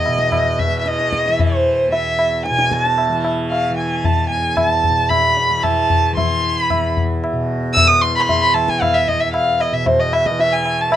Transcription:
0.00 1.88 E2 medium
0.00 0.68 E3 medium
0.00 0.61 D#5 medium
0.06 2.50 B2 medium
0.06 tabla na medium
0.18 tabla ke medium
0.32 tabla na medium
0.32 tabla ge medium
0.59 0.78 E5 medium
0.59 tabla ge medium
0.68 1.28 E3 soft
0.79 0.89 E5 medium
0.86 1.29 D#5 medium
0.86 tabla te medium
1.00 tabla te medium
1.13 tabla ke medium
1.26 3.09 E3 medium
1.26 1.42 E5 medium
1.26 tabla te medium
1.39 1.93 C5 medium
1.39 tabla tin medium
1.39 tabla ge medium
1.88 4.29 E2 medium
1.92 2.42 E5 medium
1.92 tabla tin medium
2.19 tabla na medium
2.46 2.73 G#5 loud
2.46 tabla te medium
2.50 4.89 B2 medium
2.59 tabla te medium
2.71 2.84 G#5 medium
2.71 tabla ke medium
2.84 3.25 A5 medium
2.84 tabla te medium
2.98 tabla na medium
3.09 3.71 E3 medium
3.24 tabla na medium
3.50 3.76 F5 medium
3.50 tabla tin medium
3.71 5.50 E3 medium
3.78 4.06 G#5 medium
4.04 4.29 A5 medium
4.04 tabla tin medium
4.04 tabla ge medium
4.29 6.73 E2 medium
4.29 4.56 G#5 medium
4.56 4.67 G#5 loud
4.56 tabla na medium
4.56 tabla ge medium
4.67 5.10 A5 loud
4.84 tabla ge soft
4.89 7.32 B2 soft
5.09 5.64 B5 medium
5.09 tabla na medium
5.09 tabla ge medium
5.37 tabla te medium
5.50 6.13 E3 medium
5.63 6.16 A5 loud
5.63 tabla na medium
5.63 tabla ge medium
5.90 tabla ge medium
6.13 7.93 E3 medium
6.13 6.59 C6 medium
6.17 tabla tin medium
6.17 tabla ge medium
6.59 6.92 B5 medium
6.70 9.12 E2 medium
6.70 tabla na medium
6.70 tabla ge medium
6.97 tabla ge medium
7.24 tabla na medium
7.33 9.72 B2 medium
7.74 7.89 E6 loud
7.74 tabla tin medium
7.74 tabla ge medium
7.87 8.03 D#6 loud
7.93 8.54 E3 medium
8.01 8.15 C6 medium
8.15 8.20 B5 medium
8.15 8.22 C6 medium
8.21 8.29 B5 medium
8.27 8.43 C6 medium
8.27 tabla tin medium
8.27 tabla ge medium
8.41 8.55 B5 medium
8.54 10.31 E3 medium
8.54 8.71 A5 medium
8.54 tabla na medium
8.68 8.82 G#5 medium
8.68 tabla ke medium
8.81 8.96 F5 medium
8.81 tabla na medium
8.81 tabla ge medium
8.94 9.09 E5 medium
9.08 9.21 D#5 medium
9.08 tabla ge medium
9.13 10.96 E2 soft
9.20 9.33 E5 medium
9.33 9.62 F5 medium
9.33 tabla na medium
9.60 9.75 D#5 medium
9.60 tabla na medium
9.72 10.96 B2 medium
9.72 9.87 E5 medium
9.86 10.01 C5 medium
9.86 tabla tin medium
9.86 tabla ge medium
9.99 10.14 D#5 medium
10.13 10.27 E5 medium
10.13 tabla na medium
10.26 10.42 D#5 medium
10.26 tabla ke medium
10.31 10.90 E3 medium
10.40 10.54 E5 medium
10.40 tabla tin medium
10.53 10.82 G#5 medium
10.66 tabla na medium
10.81 10.95 A5 medium
10.90 10.96 E3 medium
10.90 tabla na medium

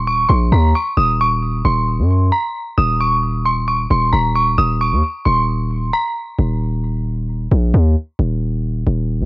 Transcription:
0.00 0.26 D#1 loud
0.07 0.24 C#6 medium
0.29 0.51 A#1 loud
0.29 0.46 C6 medium
0.52 0.74 D#2 loud
0.52 0.69 A#5 medium
0.75 0.92 C#6 medium
0.97 1.62 D#1 loud
0.97 1.14 D#6 loud
1.21 1.63 C#6 medium
1.65 2.00 D#1 loud
1.65 2.29 C6 medium
1.99 2.31 F#2 loud
2.32 2.49 A#5 medium
2.78 3.86 D#1 loud
2.78 2.95 D#6 loud
3.00 3.43 C#6 medium
3.45 3.63 C6 medium
3.68 3.85 C#6 medium
3.91 4.12 D#1 loud
3.91 4.08 C6 medium
4.13 4.56 D#1 loud
4.13 4.30 A#5 medium
4.35 4.53 C#6 medium
4.58 4.93 D#1 loud
4.58 4.75 D#6 loud
4.81 5.23 C#6 medium
4.92 5.03 D#2 loud
5.25 5.91 D#1 loud
5.25 5.89 C6 medium
5.93 6.11 A#5 medium
6.39 7.47 D#1 loud
7.51 7.73 A#1 loud
7.74 7.96 D#2 loud
8.19 8.84 D#1 loud
8.87 9.22 D#1 loud
9.21 9.25 F#2 loud

